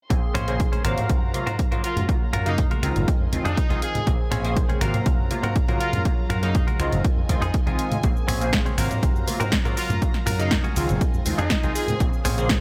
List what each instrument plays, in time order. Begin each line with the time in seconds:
0.10 slap bass A#1, analog polysynth C#3 A#3 C4 G#4, string section G#4 C6, kick, closed hi-hat
0.34 slap bass A#1, clean electric guitar C#4 G#4 C5, finger snap, closed hi-hat, low conga, shaker
0.47 analog polysynth C#3 A#3 G#4 C5, closed hi-hat, shaker
0.60 kick, closed hi-hat
0.72 clean electric guitar C#4 G#4 C5, closed hi-hat, high conga
0.84 slap bass G#1, analog polysynth C3 F#3 A#3 F5, string section F#3 C5 F5 A#5, clean electric guitar F4 F#4 A#4 C5, finger snap, closed hi-hat
0.97 slap bass G#2, closed hi-hat, low conga, shaker
1.09 slap bass C2, kick, closed hi-hat, shaker
1.22 slap bass F#2
1.34 analog polysynth C3 F#3 A#3 F4, closed hi-hat, high conga, shaker
1.47 slap bass G#2, clean electric guitar F4 F#4 A#4 C5, closed hi-hat
1.59 kick, closed hi-hat
1.71 slap bass G#2, analog polysynth C#3 F#3 A#3 F4, clean electric guitar F4 F#4 A#4 C5, closed hi-hat
1.84 horn section F4, clean electric guitar F4 F#4 A#4, string section F5 A#5, closed hi-hat, shaker
1.97 slap bass F#2, closed hi-hat, high conga, low conga, shaker
2.08 analog polysynth C#3 F#3 A#3 F4, kick, closed hi-hat, shaker
2.33 slap bass F#2, clean electric guitar F4 F#4 A#4, finger snap, closed hi-hat, low conga, shaker
2.46 analog polysynth C#3 F#3 A#3 F5, horn section D#4, closed hi-hat, shaker
2.58 kick, closed hi-hat
2.71 clean electric guitar F4 F#4 A#4, closed hi-hat, high conga
2.83 slap bass C#2, analog polysynth D#3 G#3 C4 F4, finger snap, closed hi-hat, shaker
2.96 slap bass F#1, closed hi-hat, low conga, shaker
3.07 string section F4 D#5 G#5, kick, closed hi-hat
3.20 slap bass F2
3.32 slap bass D#2, analog polysynth D#3 G#3 C4 F4, closed hi-hat, high conga, shaker
3.45 slap bass F2, clean electric guitar D#4 F4 G#4, horn section D#4, closed hi-hat
3.57 kick, closed hi-hat
3.69 slap bass C2, analog polysynth D#3 G#3 C4 F4, clean electric guitar D#4 F4 G#4, closed hi-hat
3.82 horn section G#4, closed hi-hat
3.95 closed hi-hat, high conga, low conga, shaker
4.06 slap bass A#1, analog polysynth C#3 A#3 C4 G#4, string section C5, kick, closed hi-hat
4.31 slap bass A#1, clean electric guitar C4 C#4 G#4, finger snap, closed hi-hat, low conga, shaker
4.44 analog polysynth C#3 A#3 G#4 C5, closed hi-hat, shaker
4.57 kick, closed hi-hat
4.69 clean electric guitar C4 C#4 G#4, closed hi-hat, high conga
4.81 slap bass G#1, analog polysynth C3 F#3 A#3 F5, string section F#3 F5 A#5, clean electric guitar C4 F4 F#4 A#4, finger snap, closed hi-hat
4.94 slap bass G#2, closed hi-hat, low conga, shaker
5.06 slap bass C2, kick, closed hi-hat
5.19 slap bass F#2
5.30 analog polysynth C3 F#3 A#3 F4, closed hi-hat, high conga, shaker
5.43 slap bass G#2, clean electric guitar C4 F4 F#4 A#4, closed hi-hat, shaker
5.56 kick, closed hi-hat
5.68 slap bass G#2, analog polysynth C#3 F#3 A#3 F4, clean electric guitar C4 F4 F#4 A#4, closed hi-hat
5.80 clean electric guitar F4 F#4 A#4, horn section F4, closed hi-hat, shaker
5.93 slap bass F#2, closed hi-hat, high conga, low conga, shaker
6.05 analog polysynth C#3 F#3 A#3 F4, kick, closed hi-hat
6.30 slap bass F#2, clean electric guitar F4 F#4 A#4, finger snap, closed hi-hat, low conga, shaker
6.42 analog polysynth C#3 F#3 A#3 F5, horn section D#4, closed hi-hat, shaker
6.55 kick, closed hi-hat
6.67 clean electric guitar F4 F#4 A#4, closed hi-hat, high conga
6.79 slap bass C#2, analog polysynth D#3 G#3 C4 F4, finger snap, closed hi-hat, shaker
6.92 slap bass F#1, closed hi-hat, low conga, shaker
7.04 string section F4 D#5 G#5, kick, closed hi-hat
7.17 slap bass F2
7.29 slap bass D#2, analog polysynth D#3 G#3 C4 F4, kick, closed hi-hat, high conga, shaker
7.42 slap bass F2, clean electric guitar D#4 F4 G#4, closed hi-hat, shaker
7.54 kick, closed hi-hat
7.66 slap bass C2, analog polysynth D#3 G#3 C4 F4, clean electric guitar D#4 F4 G#4, closed hi-hat
7.79 closed hi-hat, shaker
7.92 closed hi-hat, high conga, low conga, shaker
8.03 slap bass A#1, analog polysynth C#3 A#3 C4 G#4, string section C5, kick, closed hi-hat, shaker
8.17 shaker
8.28 slap bass A#1, clean electric guitar C4 C#4 G#4, finger snap, open hi-hat, low conga, shaker
8.41 analog polysynth C#3 A#3 G#4 C5, closed hi-hat, shaker
8.53 kick, snare, closed hi-hat, shaker
8.66 clean electric guitar C4 C#4 G#4, closed hi-hat, high conga, shaker
8.78 slap bass G#1, analog polysynth C3 F#3 A#3 F5, string section F#3 F5 A#5, clean electric guitar C4 F4 F#4 A#4, finger snap, open hi-hat, shaker
8.91 slap bass G#2, closed hi-hat, low conga, shaker
9.03 slap bass C2, kick, closed hi-hat, shaker
9.15 slap bass F#2, shaker
9.27 analog polysynth C3 F#3 A#3 F4, open hi-hat, high conga, shaker
9.40 slap bass G#2, clean electric guitar C4 F4 F#4 A#4, closed hi-hat, shaker
9.52 kick, snare, closed hi-hat, shaker
9.65 slap bass G#2, analog polysynth C#3 F#3 A#3 F4, clean electric guitar C4 F4 F#4 A#4, closed hi-hat, shaker
9.77 horn section F4, clean electric guitar F4 F#4 A#4, string section F5, open hi-hat, shaker
9.90 slap bass F#2, closed hi-hat, high conga, low conga, shaker
10.01 analog polysynth C#3 F#3 A#3 F4, kick, closed hi-hat, shaker
10.14 snare, shaker
10.26 slap bass F#2, clean electric guitar F4 F#4 A#4, finger snap, open hi-hat, low conga, shaker
10.39 analog polysynth C#3 F#3 A#3 F5, horn section D#4, closed hi-hat, shaker
10.51 kick, snare, closed hi-hat, shaker
10.64 clean electric guitar F4 F#4 G#4, closed hi-hat, high conga, shaker
10.76 slap bass C#2, analog polysynth D#3 G#3 C4 F4, open hi-hat, shaker
10.89 slap bass F#1, closed hi-hat, low conga, shaker
11.01 string section F4 D#5 G#5, kick, closed hi-hat, shaker
11.14 slap bass F2, shaker
11.25 slap bass D#2, analog polysynth D#3 G#3 C4 F4, open hi-hat, high conga, shaker
11.38 slap bass F2, clean electric guitar D#4 F4 G#4, horn section D#4, closed hi-hat, shaker
11.50 kick, snare, closed hi-hat, shaker
11.63 slap bass C2, analog polysynth D#3 G#3 C4 F4, clean electric guitar D#4 F4 G#4, closed hi-hat, shaker
11.75 horn section G#4, open hi-hat, shaker
11.88 closed hi-hat, high conga, low conga, shaker
12.00 slap bass A#1, analog polysynth C#3 A#3 C4 G#4, string section C5, kick, closed hi-hat, shaker
12.13 shaker
12.25 slap bass A#1, clean electric guitar C4 C#4 G#4, finger snap, open hi-hat, low conga, shaker
12.38 analog polysynth C#3 A#3 G#4 C5, closed hi-hat, shaker
12.49 kick, snare, closed hi-hat, shaker